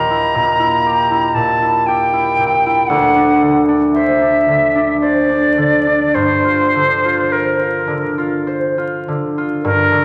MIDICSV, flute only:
0, 0, Header, 1, 2, 480
1, 0, Start_track
1, 0, Tempo, 1020408
1, 1365, Tempo, 1056338
1, 1366, Time_signature, 3, 2, 24, 8
1, 2325, Tempo, 1156069
1, 4245, Tempo, 1060071
1, 4430, End_track
2, 0, Start_track
2, 0, Title_t, "Flute"
2, 0, Program_c, 0, 73
2, 0, Note_on_c, 0, 82, 84
2, 633, Note_on_c, 0, 81, 78
2, 640, Note_off_c, 0, 82, 0
2, 877, Note_on_c, 0, 79, 82
2, 884, Note_off_c, 0, 81, 0
2, 1354, Note_on_c, 0, 78, 87
2, 1361, Note_off_c, 0, 79, 0
2, 1705, Note_off_c, 0, 78, 0
2, 1832, Note_on_c, 0, 76, 77
2, 2303, Note_off_c, 0, 76, 0
2, 2321, Note_on_c, 0, 74, 76
2, 2795, Note_on_c, 0, 72, 86
2, 2801, Note_off_c, 0, 74, 0
2, 3283, Note_on_c, 0, 70, 63
2, 3289, Note_off_c, 0, 72, 0
2, 3762, Note_off_c, 0, 70, 0
2, 4239, Note_on_c, 0, 70, 78
2, 4430, Note_off_c, 0, 70, 0
2, 4430, End_track
0, 0, End_of_file